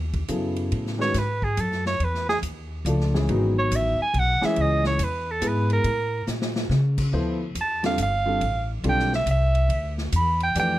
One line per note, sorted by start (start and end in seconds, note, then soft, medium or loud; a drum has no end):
0.00 0.28 D#2 medium
0.13 kick medium
0.13 ride soft
0.28 0.70 F#2 medium
0.28 0.94 C#3 medium
0.28 0.94 F#3 medium
0.28 0.94 B3 medium
0.28 0.94 E4 medium
0.28 0.94 A4 medium
0.28 hi-hat pedal medium
0.28 ride medium
0.56 ride soft
0.72 1.13 A2 medium
0.72 ride medium
0.86 snare soft
0.98 1.12 D#3 medium
0.98 1.13 G#3 medium
0.98 1.13 C#4 medium
0.98 1.13 F#4 medium
0.98 1.13 B4 medium
0.98 1.20 C#5 medium
0.98 snare soft
1.14 1.56 G#2 medium
1.14 snare soft
1.14 hi-hat pedal medium
1.14 ride medium
1.18 1.45 B4 medium
1.42 1.62 G#4 medium
1.42 kick medium
1.57 1.99 F#2 medium
1.57 1.87 A4 medium
1.57 hi-hat pedal medium
1.57 ride medium
1.72 snare soft
1.86 2.06 C#5 medium
1.86 snare soft
1.99 2.41 E2 medium
1.99 ride medium
2.04 2.29 B4 medium
2.15 snare soft
2.29 2.38 G#4 loud
2.29 snare soft
2.42 2.84 D#2 medium
2.42 hi-hat pedal medium
2.42 ride medium
2.85 3.27 C#2 medium
2.85 3.11 F3 medium
2.85 3.11 A3 medium
2.85 3.11 D4 medium
2.85 3.11 F4 medium
2.85 3.11 A4 medium
2.85 hi-hat pedal medium
2.85 ride medium
3.00 snare soft
3.14 3.51 E3 medium
3.14 3.51 G#3 medium
3.14 3.51 C#4 medium
3.14 3.51 E4 medium
3.14 3.51 G#4 medium
3.14 snare soft
3.28 3.70 G#1 medium
3.28 3.94 D#3 medium
3.28 3.94 F#3 medium
3.28 3.94 B3 medium
3.28 3.94 D#4 medium
3.28 3.95 F#4 medium
3.28 ride medium
3.59 3.77 C#5 loud
3.71 3.97 A1 medium
3.71 hi-hat pedal medium
3.71 ride medium
3.76 4.01 E5 medium
4.02 4.21 G#5 loud
4.14 4.40 B1 medium
4.14 ride medium
4.19 4.47 F#5 loud
4.41 4.96 E3 medium
4.41 4.97 G#3 medium
4.41 4.96 C#4 medium
4.41 4.97 E4 medium
4.41 4.97 G#4 medium
4.41 muted upright bass stroke soft
4.41 snare medium
4.45 4.63 E5 medium
4.56 4.98 C#2 medium
4.56 ride medium
4.61 4.86 D#5 medium
4.84 5.06 C#5 medium
4.84 snare soft
4.99 5.41 E2 medium
4.99 hi-hat pedal medium
4.99 ride medium
5.04 5.33 B4 medium
5.31 5.49 A4 medium
5.41 5.83 G#2 loud
5.41 5.84 G#3 medium
5.41 5.85 B3 medium
5.41 5.85 E4 medium
5.41 5.85 G#4 medium
5.41 5.85 B4 medium
5.41 hi-hat pedal medium
5.41 ride medium
5.48 5.72 B4 loud
5.70 6.25 A#4 medium
5.70 ride soft
5.84 6.26 A2 medium
5.84 ride medium
6.27 6.69 A#2 medium
6.27 snare medium
6.27 hi-hat pedal medium
6.42 snare medium
6.56 snare medium
6.69 7.11 C#3 loud
6.69 snare medium
6.98 kick medium
6.98 crash medium
7.13 7.54 D2 medium
7.13 7.38 F3 medium
7.13 7.38 B3 medium
7.13 7.38 E4 medium
7.13 7.39 A4 medium
7.13 7.38 C5 medium
7.55 7.97 E2 medium
7.55 hi-hat pedal medium
7.55 ride medium
7.61 7.84 A5 medium
7.83 7.97 D3 medium
7.83 7.97 G3 medium
7.83 7.97 C4 medium
7.83 7.97 F4 medium
7.83 7.97 A4 medium
7.83 7.99 F5 medium
7.83 snare medium
7.83 ride soft
7.98 8.40 G1 medium
7.98 hi-hat pedal medium
7.98 ride medium
8.03 8.67 F5 loud
8.25 8.39 D3 medium
8.25 8.40 G3 medium
8.25 8.40 C4 medium
8.25 8.40 F4 medium
8.25 8.40 A4 medium
8.41 8.83 A1 medium
8.41 ride medium
8.84 9.25 B1 medium
8.84 9.09 D3 medium
8.84 9.09 G3 medium
8.84 9.09 C4 medium
8.84 9.09 F4 medium
8.84 9.10 A4 medium
8.84 ride medium
8.89 9.13 G5 loud
8.99 snare soft
9.13 9.28 E5 medium
9.13 snare soft
9.26 9.68 C2 loud
9.26 hi-hat pedal medium
9.26 ride medium
9.31 9.95 E5 medium
9.55 ride soft
9.69 10.11 D2 medium
9.69 ride medium
9.98 snare soft
10.12 10.54 E2 medium
10.12 hi-hat pedal medium
10.12 ride medium
10.16 10.41 B5 loud
10.40 10.56 G5 loud
10.40 ride soft
10.55 10.79 F2 medium
10.55 10.79 E3 medium
10.55 10.79 A3 medium
10.55 10.79 D4 medium
10.55 10.79 G4 medium
10.55 10.79 B4 medium
10.55 hi-hat pedal medium
10.55 ride medium
10.60 10.79 G5 loud